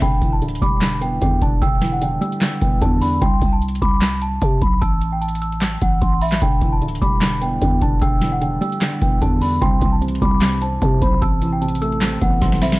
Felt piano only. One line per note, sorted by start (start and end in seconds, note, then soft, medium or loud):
0.02 0.40 D3 medium
0.22 1.22 E3 medium
0.42 0.81 D3 medium
0.62 1.62 G3 medium
0.82 1.20 D3 medium
1.01 2.01 B3 medium
1.22 1.61 D3 medium
1.42 2.42 D4 medium
1.62 2.00 D3 medium
1.81 2.82 E3 medium
2.01 2.40 D3 medium
2.21 3.21 G3 loud
2.42 2.80 D3 medium
2.62 3.22 B3 medium
2.81 3.22 D3 loud
3.02 3.22 D4 medium
6.42 6.80 D3 medium
6.62 7.62 E3 medium
6.82 7.21 D3 medium
7.02 8.02 G3 medium
7.22 7.60 D3 medium
7.41 8.42 B3 medium
7.62 8.01 D3 medium
7.82 8.82 D4 medium
8.02 8.40 D3 medium
8.21 9.21 E3 medium
8.41 8.80 D3 medium
8.61 9.61 G3 loud
8.82 9.20 D3 medium
9.02 9.62 B3 medium
9.21 9.62 D3 loud
9.42 9.62 D4 medium
9.62 10.00 C3 medium
9.82 10.82 E3 medium
10.01 10.40 C3 medium
10.22 11.22 G3 medium
10.42 10.81 C3 medium
10.61 11.22 C4 medium
10.82 11.20 C3 medium
11.02 11.22 C5 medium
11.22 11.60 C3 medium
11.42 12.42 E3 medium
11.61 12.00 C3 medium
11.81 12.79 A3 loud
12.02 12.40 C3 medium
12.22 12.79 B3 medium
12.41 12.79 C3 medium
12.61 12.79 C4 medium